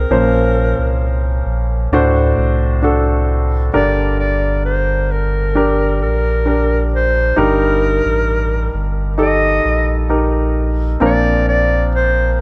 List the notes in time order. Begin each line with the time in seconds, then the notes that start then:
Already playing: C4 G#4 A#4 C5
0.10 A#1 A#2 F3 C#4 A#4 C5
0.79 C2
1.46 A#1
1.92 D2 A2 D4 F#4 C5
2.38 C2
2.82 D4 F#4 A4
3.73 G1 G2 D3 D4 G4 A#4 D5
4.19 D5
4.65 C5
5.11 A#4
5.55 D4 G4 A#4
6.00 A#1 A#4
6.45 D4 G4 A#4
6.94 C5
7.36 G1 G2 G3 D#4 G4 A#4
8.05 A1
8.74 G1
9.18 D#4 G4 A4 D#5
9.65 A#1
10.09 D#4 G4 A#4
11.00 A#1 A#2 F3 C4 D4 A#4 D5
11.49 D5
11.95 C5
12.33 C5